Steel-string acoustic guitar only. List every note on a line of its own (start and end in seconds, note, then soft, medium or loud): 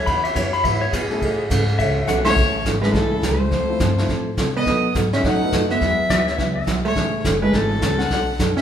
0.07 0.27 E3 medium
0.07 0.27 B3 medium
0.07 0.27 E4 medium
0.07 0.27 G#4 medium
0.35 0.47 E3 medium
0.35 0.47 B3 medium
0.35 0.47 E4 medium
0.35 0.47 G#4 medium
0.64 0.84 E3 medium
0.64 0.84 B3 medium
0.64 0.84 E4 medium
0.64 0.85 G#4 medium
0.93 1.04 E3 medium
0.93 1.04 B3 medium
0.93 1.05 E4 medium
0.93 1.05 G#4 medium
1.21 1.41 C#3 medium
1.21 1.41 E3 medium
1.21 1.42 A3 medium
1.21 1.42 C#4 medium
1.21 1.42 G#4 medium
1.50 1.61 C#3 medium
1.50 1.62 E3 medium
1.50 1.62 A3 medium
1.50 1.62 C#4 medium
1.50 1.62 G#4 medium
1.79 1.99 C#3 medium
1.79 1.99 E3 medium
1.79 1.99 A3 medium
1.79 1.99 C#4 medium
1.79 1.99 G#4 medium
2.07 2.19 C#3 medium
2.07 2.19 E3 medium
2.07 2.19 A3 medium
2.07 2.19 C#4 medium
2.07 2.20 G#4 medium
2.36 2.56 C#3 medium
2.36 2.56 E3 medium
2.36 2.56 A3 medium
2.36 2.56 C#4 medium
2.36 2.57 G#4 medium
2.65 2.76 C#3 medium
2.65 2.76 E3 medium
2.65 2.77 A3 medium
2.65 2.77 C#4 medium
2.65 2.77 G#4 medium
2.93 3.13 C#3 medium
2.93 3.14 E3 medium
2.93 3.14 A3 medium
2.93 3.14 C#4 medium
2.93 3.14 G#4 medium
3.22 3.34 C#3 medium
3.22 3.34 E3 medium
3.22 3.34 A3 medium
3.22 3.34 C#4 medium
3.22 3.34 G#4 medium
3.51 3.71 F3 medium
3.51 3.71 C4 medium
3.51 3.71 E4 medium
3.51 3.71 A4 medium
3.80 3.91 F3 medium
3.80 3.91 C4 medium
3.80 3.92 E4 medium
3.80 3.92 A4 medium
4.08 4.28 F3 medium
4.08 4.28 C4 medium
4.08 4.29 E4 medium
4.08 4.29 A4 medium
4.37 4.48 F3 medium
4.37 4.49 C4 medium
4.37 4.49 E4 medium
4.37 4.49 A4 medium
4.66 4.86 B2 medium
4.66 4.86 F#3 medium
4.66 4.86 A3 medium
4.66 4.86 D#4 medium
4.66 4.86 F#4 medium
4.94 5.06 B2 medium
4.94 5.06 F#3 medium
4.94 5.06 A3 medium
4.94 5.06 D#4 medium
4.94 5.07 F#4 medium
5.23 5.43 B2 medium
5.23 5.43 F#3 medium
5.23 5.44 A3 medium
5.23 5.44 D#4 medium
5.23 5.44 F#4 medium
5.52 5.63 B2 medium
5.52 5.64 F#3 medium
5.52 5.64 A3 medium
5.52 5.64 D#4 medium
5.52 5.64 F#4 medium
5.81 6.01 E3 medium
5.81 6.01 F#3 medium
5.81 6.01 B3 medium
5.81 6.01 F#4 medium
5.81 6.01 G#4 medium
6.09 6.21 E3 medium
6.09 6.21 F#3 medium
6.09 6.21 B3 medium
6.09 6.21 F#4 medium
6.09 6.21 G#4 medium
6.38 6.58 E3 medium
6.38 6.58 F#3 medium
6.38 6.58 B3 medium
6.38 6.58 F#4 medium
6.38 6.58 G#4 medium
6.67 6.78 E3 medium
6.67 6.78 F#3 medium
6.67 6.78 B3 medium
6.67 6.79 F#4 medium
6.67 6.79 G#4 medium
6.95 7.15 C#3 medium
6.95 7.15 E3 medium
6.95 7.16 A3 medium
6.95 7.16 C#4 medium
6.95 7.16 G#4 medium
7.24 7.36 C#3 medium
7.24 7.36 E3 medium
7.24 7.36 A3 medium
7.24 7.36 C#4 medium
7.24 7.36 G#4 medium
7.53 7.73 C#3 medium
7.53 7.73 E3 medium
7.53 7.73 A3 medium
7.53 7.73 C#4 medium
7.53 7.74 G#4 medium
7.82 7.93 C#3 medium
7.82 7.93 E3 medium
7.82 7.94 A3 medium
7.82 7.93 C#4 medium
7.82 7.94 G#4 medium
8.10 8.30 B2 medium
8.10 8.31 F#3 medium
8.10 8.31 A3 medium
8.10 8.31 D4 medium
8.10 8.31 F#4 medium
8.40 8.51 B2 medium
8.40 8.51 F#3 medium
8.40 8.51 A3 medium
8.40 8.51 D4 medium
8.40 8.51 F#4 medium